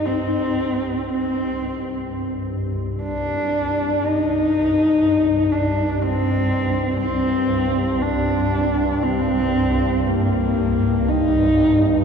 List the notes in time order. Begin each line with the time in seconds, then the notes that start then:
Already playing: C2 G2
0.06 C4
1.07 C4
3.03 D4
4.04 D#4
5.52 D4
6.02 C4
7.00 C4
8.01 D4
9.03 C4
10.06 A#3
11.08 D#4